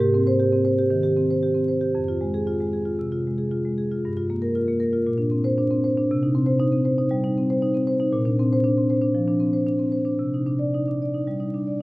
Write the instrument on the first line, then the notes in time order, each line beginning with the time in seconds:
marimba
Already playing: G#2
0.01 G4
0.14 C4
0.27 C5
0.40 G4
0.53 C4
0.65 C5
0.79 G4
0.90 D#3
1.03 G4
1.17 C4
1.30 C5
1.43 G4
1.54 C4
1.68 C5
1.81 G4
1.95 F2
2.08 F4
2.21 G#3
2.34 G#4
2.47 F4
2.61 G#3
2.73 G#4
2.85 F4
2.99 C3
3.12 F4
3.27 G#3
3.38 G#4
3.51 F4
3.65 G#3
3.78 G#4
3.91 F4
4.05 G2
4.17 F4
4.30 A#3
4.42 A#4
4.55 F4
4.68 A#3
4.80 A#4
4.93 F4
5.07 A#2
5.18 D4
5.31 C4
5.44 C5
5.58 D4
5.70 C4
5.84 C5
5.98 D4
6.11 C3
6.23 D#4
6.35 C4
6.46 C5
6.60 D#4
6.72 C4
6.85 C5
6.98 D#4
7.11 G3
7.24 D#4
7.38 C4
7.50 C5
7.62 D#4
7.74 C4
7.87 C5
8.00 D#4
8.13 A#2
8.25 D4
8.39 C4
8.53 C5
8.64 D4
8.78 C4
8.90 C5
9.02 D4
9.15 F3
9.28 D4
9.40 C4
9.53 C5
9.67 D4
9.79 C4
9.92 C5
10.05 D4
10.19 C3
10.34 D#4
10.46 D4
10.59 D5
10.74 D#4
10.88 D4
11.02 D5
11.14 D#4
11.27 G3
11.40 D#4
11.54 D4
11.67 D5